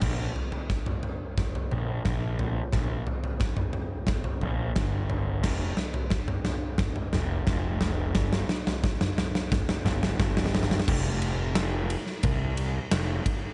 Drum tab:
CC |x-------------------------------|--------------------------------|x-------------------------------|--------------------------------|
RD |--------------------------------|--------------------------------|--------------------------------|--------------------------------|
SD |o-------o-------o-------o-------|o-------o-------o-------o-------|o---o---o---o---o---o---o---o---|o-o-o-o-o-o-o-o-o-o-o-o-o-oooooo|
T2 |----------o-----o---------------|----------o-----o---------------|----------o-----o---------------|----------o-----o-------------o-|
FT |o---o-o---o-o---o-o-o-------o---|o---o-o---o-o---o-o-o-------o---|o---o-o---o-o---o-o-o-------o---|o-----o-----o---o-o-o-----o-o---|
BD |o-------o-------o-------o-------|o-------o-------o-------o-------|o-------o-------o-------o-------|o-------o-------o-------o-------|

CC |x-------------------------------|
RD |----x---x---x---x---x---x---x---|
SD |--------o-----o---------o-------|
T2 |--------------------------------|
FT |--------------------------------|
BD |o---------------o-----------o---|